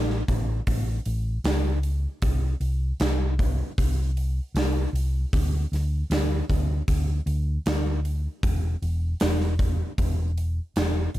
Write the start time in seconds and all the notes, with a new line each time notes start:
Already playing: A1
0.10 snare
0.28 A1, kick, open hi-hat
0.67 A1, kick, open hi-hat
1.06 A1, open hi-hat
1.44 C#2, snare, open hi-hat
1.83 open hi-hat
2.22 C2, kick, open hi-hat
2.60 C2, open hi-hat
3.00 C2, snare, open hi-hat
3.39 kick, open hi-hat
3.78 C2, kick, open hi-hat
4.17 open hi-hat
4.54 C2, snare, open hi-hat
4.93 C2, open hi-hat
5.33 D2, kick, open hi-hat
5.72 D2, snare, open hi-hat
6.10 D2, snare, open hi-hat
6.50 D2, kick, open hi-hat
6.88 D2, kick, open hi-hat
7.26 D2, open hi-hat
7.66 D2, snare, open hi-hat
8.05 open hi-hat
8.43 E1, kick, open hi-hat
8.82 E1, open hi-hat
9.20 E1, snare, open hi-hat
9.40 snare
9.59 kick, open hi-hat
9.98 E1, kick, open hi-hat
10.38 open hi-hat
10.76 E1, snare, open hi-hat
11.14 G#1, open hi-hat